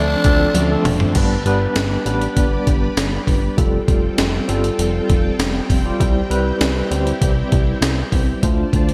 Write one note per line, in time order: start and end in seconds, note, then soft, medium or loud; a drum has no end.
0.00 0.16 D2 loud
0.00 0.54 D3 medium
0.00 0.25 F3 medium
0.00 0.25 A3 medium
0.00 0.55 A3 medium
0.00 0.25 C4 medium
0.00 0.26 D4 medium
0.00 0.57 D4 medium
0.00 0.85 D4 loud
0.00 0.26 A4 medium
0.00 1.13 A4 medium
0.00 1.13 D5 medium
0.00 1.13 A5 medium
0.00 1.11 C6 medium
0.24 0.47 D2 loud
0.24 0.55 F3 medium
0.24 0.55 A3 medium
0.24 0.55 C4 medium
0.24 0.55 D4 medium
0.24 0.55 A4 medium
0.24 kick loud
0.24 closed hi-hat medium
0.54 0.77 D2 loud
0.54 1.67 D3 medium
0.54 1.16 A3 medium
0.54 1.67 D4 medium
0.54 closed hi-hat loud
0.54 high tom medium
0.70 1.00 F3 medium
0.70 1.01 A3 medium
0.70 1.01 C4 medium
0.70 1.01 D4 medium
0.70 1.01 A4 loud
0.85 1.07 F1 medium
0.85 mid tom medium
0.85 open hi-hat medium
1.00 floor tom loud
1.15 1.37 G1 loud
1.15 1.36 G3 medium
1.15 1.36 B3 medium
1.15 1.36 D4 medium
1.15 3.55 G4 medium
1.15 3.55 B4 medium
1.15 1.36 B4 loud
1.15 3.55 D5 medium
1.15 3.55 B5 medium
1.15 kick loud
1.15 closed hi-hat medium
1.15 crash medium
1.46 1.67 G1 loud
1.46 1.86 G3 medium
1.46 1.86 B3 medium
1.46 1.86 D4 medium
1.46 1.86 B4 loud
1.46 closed hi-hat medium
1.76 1.98 G1 loud
1.76 snare loud
1.76 closed hi-hat medium
1.76 tambourine medium
2.05 2.28 A1 medium
2.05 2.86 G3 medium
2.05 2.87 B3 medium
2.05 2.87 D4 medium
2.05 2.87 B4 medium
2.05 closed hi-hat medium
2.22 closed hi-hat soft
2.37 2.59 G1 loud
2.37 kick medium
2.37 closed hi-hat loud
2.67 2.89 G1 loud
2.67 kick medium
2.67 closed hi-hat medium
2.97 3.19 G1 loud
2.97 snare loud
2.97 closed hi-hat medium
2.97 tambourine medium
3.27 3.49 G1 medium
3.27 kick medium
3.27 open hi-hat medium
3.57 3.80 F1 loud
3.57 4.18 G3 medium
3.57 4.18 C4 medium
3.57 8.39 C4 medium
3.57 5.98 F4 medium
3.57 4.18 F4 medium
3.57 5.98 A4 medium
3.57 4.19 A4 loud
3.57 8.39 G5 medium
3.57 kick loud
3.57 closed hi-hat medium
3.88 4.10 F1 loud
3.88 kick loud
3.88 closed hi-hat medium
4.18 4.40 F1 loud
4.18 snare loud
4.18 closed hi-hat medium
4.18 tambourine medium
4.48 4.71 G1 loud
4.48 5.29 G3 medium
4.48 5.29 C4 medium
4.48 5.29 F4 medium
4.48 5.30 A4 loud
4.48 closed hi-hat medium
4.64 closed hi-hat soft
4.79 5.01 F1 loud
4.79 closed hi-hat loud
5.09 5.31 F1 loud
5.09 kick medium
5.09 closed hi-hat medium
5.39 5.61 F1 loud
5.39 snare loud
5.39 closed hi-hat medium
5.39 tambourine medium
5.70 5.92 F1 loud
5.70 kick medium
5.70 open hi-hat medium
5.85 5.95 G3 medium
5.85 5.95 C4 medium
5.85 5.96 F4 medium
5.85 5.96 G4 loud
6.00 6.22 C2 loud
6.00 6.20 G3 medium
6.00 6.20 C4 medium
6.00 8.40 E4 medium
6.00 6.21 E4 medium
6.00 8.40 G4 medium
6.00 6.21 C5 loud
6.00 kick loud
6.00 closed hi-hat medium
6.29 6.52 C2 loud
6.29 6.70 G3 medium
6.29 6.71 C4 medium
6.29 6.71 E4 medium
6.29 6.71 B4 loud
6.29 closed hi-hat medium
6.61 6.83 C2 loud
6.61 snare loud
6.61 closed hi-hat medium
6.61 tambourine medium
6.91 7.13 D2 medium
6.91 7.71 G3 medium
6.91 7.72 C4 medium
6.91 7.72 E4 medium
6.91 7.72 C5 loud
6.91 closed hi-hat medium
7.07 closed hi-hat soft
7.21 7.43 C2 loud
7.21 kick medium
7.21 closed hi-hat loud
7.52 7.74 C2 loud
7.52 kick medium
7.52 closed hi-hat medium
7.81 8.03 C2 loud
7.81 snare loud
7.81 closed hi-hat medium
7.81 tambourine medium
8.12 8.34 C2 loud
8.12 kick medium
8.12 open hi-hat medium
8.42 8.65 D2 loud
8.42 8.94 A3 medium
8.42 8.94 D4 medium
8.42 8.94 F4 medium
8.42 8.94 C5 medium
8.42 8.94 C5 loud
8.42 8.94 D5 medium
8.42 8.94 A5 medium
8.42 kick loud
8.42 closed hi-hat medium
8.73 8.94 D2 loud
8.73 kick loud
8.73 closed hi-hat medium
8.89 closed hi-hat medium